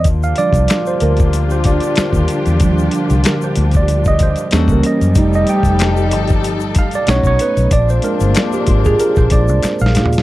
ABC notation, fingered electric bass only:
X:1
M:4/4
L:1/16
Q:"Swing 16ths" 1/4=94
K:Eb
V:1 name="Fingered electric bass" clef=bass
E,,2 z C,, z2 D,,4- D,, z2 E,, z _F,, | E,,2 z C,, z2 D,,4- D,, z =E,, ^C,, z _G,, | F,,,2 z F,,,3 G,,,4- G,,, z =B,,, B,,, z B,,, | B,,,2 z G,,, z2 A,,,2 z B,,, B,,, C,, z B,,, B,,2 |]